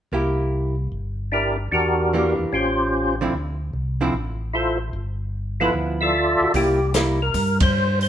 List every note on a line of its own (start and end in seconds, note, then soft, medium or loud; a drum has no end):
0.12 0.88 C2 medium
0.12 0.74 A#3 soft
0.12 0.74 E4 soft
0.12 0.75 G4 soft
0.92 1.68 G1 medium
1.32 1.56 D4 medium
1.32 1.56 E4 soft
1.32 1.57 G4 soft
1.32 1.57 A#4 medium
1.72 2.35 E2 medium
1.72 2.34 D4 soft
1.72 2.34 F#4 soft
1.72 2.34 G4 soft
1.72 2.35 A#4 medium
2.14 2.53 E3 soft
2.14 2.54 A#3 soft
2.14 2.54 D4 soft
2.14 2.54 G4 medium
2.39 2.46 E2 soft
2.53 3.29 A1 medium
2.53 3.14 C#4 medium
2.53 3.15 F4 soft
2.53 3.15 G4 soft
2.53 3.15 C5 medium
3.21 3.33 D3 medium
3.21 3.33 F3 medium
3.21 3.33 C4 medium
3.21 3.33 E4 medium
3.33 3.71 D2 medium
3.73 4.11 C2 medium
4.01 4.13 D3 medium
4.01 4.13 F3 medium
4.01 4.13 C4 medium
4.01 4.13 E4 medium
4.13 4.90 A1 medium
4.53 4.78 E4 medium
4.53 4.78 F4 soft
4.53 4.78 A4 soft
4.53 4.78 C5 medium
4.93 5.70 G1 medium
5.60 6.12 F3 soft
5.60 6.12 B3 soft
5.60 5.73 E4 medium
5.60 6.13 E4 soft
5.60 5.73 F4 medium
5.60 5.73 A4 medium
5.60 5.74 B4 medium
5.74 6.37 D2 medium
6.01 6.52 F4 medium
6.01 6.52 A4 medium
6.01 6.53 D5 medium
6.01 6.52 E5 medium
6.40 6.47 D2 soft
6.40 6.48 F#4 medium
6.54 7.30 C2 medium
6.54 6.78 G3 soft
6.54 6.79 A#3 soft
6.54 6.79 E4 soft
6.54 6.93 G4 medium
6.54 kick soft
6.54 open hi-hat soft
6.94 7.18 G3 soft
6.94 7.19 A#3 soft
6.94 7.19 E4 medium
6.94 snare medium
6.94 closed hi-hat soft
7.22 7.59 A#4 medium
7.34 8.09 G2 medium
7.34 kick soft
7.34 open hi-hat soft
7.60 7.99 C5 medium
7.60 kick medium
7.60 ride medium
8.01 8.09 C5 medium
8.01 open hi-hat soft